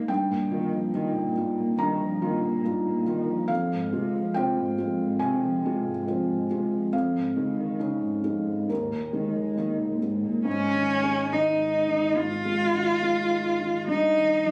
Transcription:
0.00 0.11 D#3 soft
0.00 0.11 A#3 soft
0.00 0.11 D#4 soft
0.00 0.11 F5 medium
0.08 0.31 G2 medium
0.08 1.74 G2 medium
0.08 1.74 G5 medium
0.30 0.53 A#2 medium
0.51 0.75 D#3 medium
0.51 0.89 A#3 soft
0.51 0.90 F4 soft
0.74 0.96 F3 soft
0.94 1.17 D#3 medium
0.94 1.32 D#4 soft
0.94 1.32 F4 soft
1.15 1.38 A#2 medium
1.37 1.60 G2 medium
1.37 1.75 A#3 soft
1.37 1.75 F4 soft
1.58 1.79 A#2 soft
1.78 3.45 G2 soft
1.78 2.03 D#3 medium
1.78 3.02 A#5 medium
2.02 2.24 F3 medium
2.22 2.45 D#3 medium
2.22 2.60 A#3 soft
2.22 2.60 F4 medium
2.43 2.67 A#2 medium
2.65 2.88 G2 medium
2.65 3.03 D#4 soft
2.65 3.03 F4 soft
2.87 3.10 A#2 soft
3.07 3.31 D#3 medium
3.07 3.45 A#3 soft
3.07 3.45 F4 soft
3.29 3.50 F3 medium
3.48 5.17 F2 medium
3.48 3.74 F2 medium
3.48 4.30 F5 medium
3.73 3.96 G#2 soft
3.92 4.18 C3 medium
3.92 4.31 G#3 soft
3.92 4.31 F4 soft
4.16 4.40 F3 medium
4.34 4.61 C3 medium
4.34 4.74 C4 soft
4.34 4.75 F4 soft
4.34 5.16 G5 medium
4.60 4.82 G#2 medium
4.78 5.02 F2 soft
4.78 5.17 G#3 soft
4.78 5.17 F4 soft
5.01 5.21 G#2 soft
5.19 5.44 C3 soft
5.19 5.90 C3 soft
5.19 6.88 G#5 medium
5.43 5.66 F3 medium
5.64 5.87 C3 soft
5.64 6.03 G#3 soft
5.64 6.04 F4 soft
5.85 6.08 G#2 soft
6.07 6.29 F2 soft
6.07 6.46 C4 soft
6.07 6.46 F4 soft
6.28 6.51 G#2 soft
6.50 6.74 C3 soft
6.50 6.89 G#3 soft
6.50 6.89 F4 soft
6.72 6.93 F3 soft
6.93 8.65 F2 soft
6.93 7.17 F2 medium
6.93 8.65 F5 medium
7.15 7.38 G#2 soft
7.36 7.60 C#3 soft
7.36 7.76 G#3 soft
7.36 7.77 D#4 soft
7.59 7.81 D#3 soft
7.79 8.05 C#3 soft
7.79 8.20 C#4 soft
7.79 8.20 D#4 soft
8.03 8.27 G#2 soft
8.24 8.48 F2 soft
8.24 8.65 G#3 soft
8.24 8.65 D#4 soft
8.47 8.69 G#2 soft
8.68 10.42 D#2 soft
8.68 8.93 G#2 soft
8.68 9.55 A#4 soft
8.91 9.16 A#2 soft
9.13 9.37 D#3 soft
9.13 9.54 G#3 soft
9.13 9.54 D#4 soft
9.35 9.60 G#3 soft
9.57 9.83 D#3 soft
9.57 9.98 A#3 soft
9.57 9.98 D#4 soft
9.81 10.03 A#2 soft
10.02 10.26 G#2 soft
10.02 10.42 G#3 soft
10.02 10.42 D#4 soft
10.24 10.45 A#2 soft
10.45 12.12 G#2 medium
10.45 11.34 C#4 loud
10.74 11.20 D#3 soft
11.03 11.49 G#3 soft
11.32 11.77 D#3 medium
11.32 12.19 D#4 medium
11.60 12.05 D#4 soft
11.88 12.33 D#3 soft
12.16 13.83 G#2 soft
12.16 13.87 F4 loud
12.45 12.91 G#3 soft
12.74 13.19 D#3 medium
13.02 13.48 G#3 medium
13.31 13.76 D#4 medium
13.60 13.88 D#3 soft
13.88 14.51 G2 medium
13.88 14.51 D#4 loud
14.17 14.51 D#3 soft
14.45 14.51 F3 soft

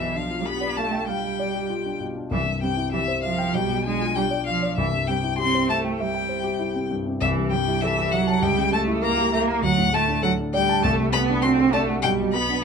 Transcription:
0.00 2.28 B1 medium
0.00 0.25 B2 soft
0.00 0.17 E3 medium
0.00 0.18 E5 medium
0.16 0.48 F3 medium
0.16 0.40 D4 soft
0.16 0.47 F5 medium
0.31 0.55 F4 soft
0.46 0.78 B3 medium
0.46 0.71 G4 soft
0.46 0.78 B5 medium
0.61 0.86 D5 soft
0.77 1.10 A3 medium
0.77 1.02 F5 soft
0.77 1.07 A5 medium
0.92 1.17 G5 soft
1.08 2.01 G3 medium
1.08 1.33 F5 soft
1.08 1.99 G5 medium
1.39 1.64 D5 soft
1.54 1.79 G4 medium
1.70 1.95 F4 soft
1.86 2.10 D4 soft
2.00 2.25 B2 soft
2.16 2.31 D4 soft
2.31 3.50 C2 medium
2.31 2.40 E3 medium
2.31 2.60 E5 medium
2.46 2.71 G2 soft
2.62 2.71 G3 medium
2.62 2.87 C4 soft
2.62 2.91 G5 medium
2.77 3.02 E4 soft
2.92 3.01 E3 medium
2.92 3.17 G4 soft
2.92 3.22 E5 medium
3.08 3.33 C5 soft
3.23 3.56 F3 medium
3.23 3.48 E5 medium
3.23 3.55 F5 medium
3.38 3.54 G5 medium
3.54 4.74 B1 medium
3.54 3.85 G3 medium
3.54 3.84 G5 medium
3.69 3.94 B2 soft
3.84 4.16 G#3 medium
3.84 4.10 D4 soft
3.84 4.16 G#5 medium
4.00 4.25 F4 medium
4.15 4.24 G3 medium
4.15 4.41 D4 medium
4.15 4.46 G5 medium
4.31 4.56 D5 soft
4.47 4.77 F3 medium
4.47 4.71 F5 medium
4.47 4.76 F5 medium
4.63 4.78 D5 medium
4.76 7.17 C2 medium
4.76 4.86 E3 medium
4.76 5.09 E5 medium
4.93 5.18 G2 medium
5.07 5.17 G3 medium
5.07 5.32 C4 soft
5.07 5.38 G5 medium
5.23 5.48 E4 soft
5.38 5.71 C4 medium
5.38 5.63 G4 medium
5.38 5.68 C6 loud
5.54 5.78 C5 medium
5.69 6.03 A3 medium
5.69 5.94 E5 medium
5.69 5.78 A5 medium
5.84 6.09 G5 medium
5.99 6.91 G3 medium
5.99 6.24 E5 medium
5.99 6.89 G5 medium
6.14 6.39 G5 medium
6.29 6.54 C5 soft
6.44 6.69 G4 medium
6.59 6.84 E4 medium
6.75 6.99 C4 medium
6.91 7.15 G2 medium
7.06 7.21 C4 soft
7.21 8.39 C2 medium
7.21 7.54 E3 medium
7.21 7.29 E5 medium
7.38 7.61 G2 medium
7.50 7.76 G3 medium
7.50 7.83 G3 medium
7.50 7.82 G5 medium
7.68 7.92 E4 medium
7.81 8.14 E3 medium
7.81 8.07 A4 medium
7.81 8.13 E5 medium
7.98 8.22 G4 medium
8.12 8.44 F#3 medium
8.12 8.37 E5 medium
8.12 8.44 F#5 medium
8.27 8.42 A5 medium
8.42 9.59 C#2 medium
8.42 8.74 G3 medium
8.42 8.72 G5 loud
8.58 8.82 C#3 medium
8.72 8.96 G3 medium
8.72 9.04 A3 medium
8.72 8.81 A5 medium
8.87 9.11 E4 medium
9.02 9.32 A#3 medium
9.02 9.26 A#4 medium
9.02 9.32 A#5 medium
9.18 9.42 G4 medium
9.33 9.65 A#3 medium
9.33 9.57 E5 medium
9.33 9.41 A#5 medium
9.48 9.63 A#5 medium
9.62 10.79 D2 medium
9.62 9.92 F#3 medium
9.62 9.95 F#5 loud
9.78 10.02 A2 medium
9.93 10.22 A3 medium
9.93 10.17 A3 medium
9.93 10.22 A5 medium
10.08 10.32 D4 medium
10.23 10.31 F#3 medium
10.23 10.47 A4 medium
10.23 10.31 F#5 loud
10.39 10.63 D4 medium
10.54 10.84 G3 medium
10.54 10.77 D5 medium
10.54 10.83 G5 loud
10.69 10.84 A5 medium
10.83 12.00 C2 medium
10.83 11.13 A3 medium
10.83 10.91 A5 loud
10.99 11.23 C3 medium
11.13 11.37 A3 medium
11.13 11.45 B3 loud
11.13 11.21 B5 loud
11.29 11.53 D4 medium
11.42 11.74 C4 loud
11.42 11.68 F#4 medium
11.42 11.50 C6 medium
11.59 11.82 A4 medium
11.73 12.02 A3 medium
11.73 11.97 D5 medium
11.73 11.81 A5 medium
11.89 12.04 F#5 medium
12.02 12.64 B1 medium
12.02 12.35 G3 medium
12.02 12.10 G5 loud
12.20 12.43 B2 medium
12.33 12.58 B3 medium
12.33 12.64 B3 medium
12.33 12.62 B5 medium
12.49 12.64 D4 medium

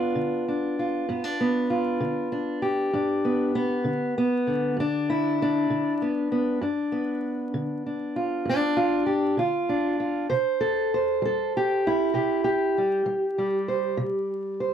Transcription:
0.00 1.09 B3 medium
0.00 0.46 D4 soft
0.00 0.79 F4 medium
0.15 0.71 D3 medium
0.48 1.09 D4 medium
0.79 1.70 F4 medium
1.09 1.64 G2 medium
1.09 1.24 B3 medium
1.24 2.31 D4 soft
1.40 3.24 B3 medium
1.70 2.62 F4 medium
2.00 2.56 D3 medium
2.32 2.93 D4 medium
2.62 5.09 G4 medium
2.93 3.48 G2 medium
2.93 3.55 D4 medium
3.25 3.54 B3 soft
3.55 4.16 B3 medium
3.84 4.40 D3 medium
4.18 4.78 B3 medium
4.47 5.69 D3 soft
4.77 5.32 G2 medium
4.77 5.40 D4 loud
5.10 6.01 E4 medium
5.42 6.61 D4 medium
5.70 6.25 D3 medium
6.02 6.30 B3 soft
6.32 6.58 B3 soft
6.61 7.16 G2 medium
6.61 7.84 D4 medium
6.92 10.26 B3 soft
7.54 8.09 D3 medium
7.86 8.47 D4 soft
8.16 8.76 F4 soft
8.45 9.01 G2 medium
8.45 9.39 D4 medium
8.77 9.06 F4 medium
9.06 9.37 G4 medium
9.37 9.93 D3 medium
9.37 9.99 F4 medium
9.69 10.26 D4 soft
10.00 10.26 F4 soft
10.30 10.85 C3 medium
10.30 10.91 C5 medium
10.61 11.22 A4 medium
10.94 11.85 C5 medium
11.22 11.77 G3 medium
11.22 11.54 A4 medium
11.57 12.13 G4 medium
11.87 12.77 E4 medium
12.14 12.69 C3 medium
12.14 12.43 G4 medium
12.44 14.29 G4 medium
12.78 13.05 G3 soft
13.06 13.37 G3 medium
13.38 14.74 G3 medium
13.68 13.95 C5 soft
13.97 14.53 C3 medium
14.60 14.74 C5 soft

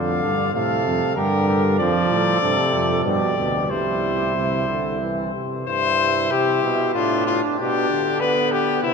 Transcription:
0.00 0.22 F2 medium
0.00 0.53 D3 medium
0.00 0.53 D5 medium
0.00 0.53 F5 medium
0.23 0.54 G2 medium
0.54 0.85 A2 medium
0.54 1.17 C3 medium
0.54 1.15 A4 medium
0.54 1.15 F5 medium
0.87 1.00 F2 medium
1.16 1.81 G2 medium
1.16 1.78 D3 medium
1.16 1.47 G4 medium
1.16 1.77 A#4 medium
1.48 1.62 G4 medium
1.79 2.10 F2 medium
1.79 2.40 F3 medium
1.79 3.03 A4 medium
1.79 3.03 D5 medium
2.11 2.41 A2 medium
2.42 2.56 G2 medium
2.42 3.07 C3 medium
2.73 3.05 F2 medium
3.05 3.20 G2 medium
3.05 3.36 B2 medium
3.05 3.69 G4 medium
3.05 3.72 D5 medium
3.37 3.70 D2 medium
3.37 3.70 B2 medium
3.70 5.32 C2 medium
3.70 4.35 G3 medium
3.70 5.32 E4 medium
3.70 5.35 C5 medium
4.36 4.68 C3 medium
4.68 5.01 D3 medium
5.01 5.34 E3 medium
5.34 5.66 C3 medium
5.67 6.32 G2 medium
5.67 6.90 E4 medium
5.67 6.33 C5 loud
6.31 6.62 C3 medium
6.31 6.93 G4 medium
6.63 6.94 B2 medium
6.94 7.42 A2 medium
6.94 7.57 D4 medium
6.94 7.25 F4 medium
7.27 7.41 F4 medium
7.58 7.89 B2 medium
7.58 8.20 D4 medium
7.58 8.22 G4 medium
7.90 8.82 D3 medium
8.20 8.83 B3 medium
8.20 8.53 B4 medium
8.52 8.82 G4 medium
8.83 8.94 C3 medium
8.83 8.94 C4 medium
8.83 8.94 E4 loud

